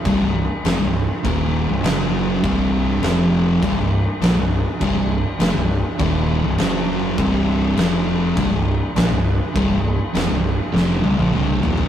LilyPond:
<<
  \new Staff \with { instrumentName = "Distorted electric guitar" } { \clef bass \time 4/4 \key c \phrygian \tempo 4 = 101 <c, g,>16 <c, g,>8 r16 <f, c>16 <c, g,>8 r16 <ees, bes, ees>8. <c, g,>16 <fis, cis fis>4 | <c, g, c>4 <f, c f>4 <c, g,>16 <c, g,>8 r16 <bes, f>16 <c, g,>8 r16 | <c, g,>16 <c, g,>8 r16 <f, c>16 <c, g,>8 r16 <ees, bes, ees>8. <c, g,>16 <fis, cis fis>4 | <c, g, c>4 <f, c f>4 <c, g,>16 <c, g,>8 r16 <bes, f>16 <c, g,>8 r16 |
<c, g,>16 <c, g,>8 r16 <f, c>16 <c, g,>8 r16 <f, c f>8 <c, g,>16 <bes, f>16 <c, g, c>8 <ees, bes, ees>8 | }
  \new Staff \with { instrumentName = "Distorted electric guitar" } { \clef bass \time 4/4 \key c \phrygian <c, g,>16 <c, g,>8 r16 <f, c>16 <c, g,>8 r16 <ees, bes, ees>8. <c, g,>16 <fis, cis fis>4 | <c, g, c>4 <f, c f>4 <c, g,>16 <c, g,>8 r16 <bes, f>16 <c, g,>8 r16 | <c, g,>16 <c, g,>8 r16 <f, c>16 <c, g,>8 r16 <ees, bes, ees>8. <c, g,>16 <fis, cis fis>4 | <c, g, c>4 <f, c f>4 <c, g,>16 <c, g,>8 r16 <bes, f>16 <c, g,>8 r16 |
<c, g,>16 <c, g,>8 r16 <f, c>16 <c, g,>8 r16 <f, c f>8 <c, g,>16 <bes, f>16 <c, g, c>8 <ees, bes, ees>8 | }
  \new Staff \with { instrumentName = "Picked electric bass" } { \clef bass \time 4/4 \key c \phrygian c,,16 c,,8 r16 f,,16 c,,8 r16 ees,,8. c,,16 fis,,4 | c,,4 f,,4 c,,16 c,,8 r16 bes,,16 c,,8 r16 | c,,16 c,,8 r16 f,,16 c,,8 r16 ees,,8. c,,16 fis,,4 | c,,4 f,,4 c,,16 c,,8 r16 bes,,16 c,,8 r16 |
c,,16 c,,8 r16 f,,16 c,,8 r16 f,,8 c,,16 bes,,16 c,,8 ees,,8 | }
  \new DrumStaff \with { instrumentName = "Drums" } \drummode { \time 4/4 <cymc bd>4 <cymc sn>4 <cymc bd>4 <cymc sn>4 | <cymc bd>4 <cymc sn>4 <cymc bd>4 <cymc sn>4 | <cymc bd>4 <cymc sn>4 <cymc bd>4 <cymc sn>4 | <cymc bd>4 <cymc sn>4 <cymc bd>4 <cymc sn>4 |
<cymc bd>4 <cymc sn>4 sn8 tommh16 tommh16 toml8 tomfh16 tomfh16 | }
>>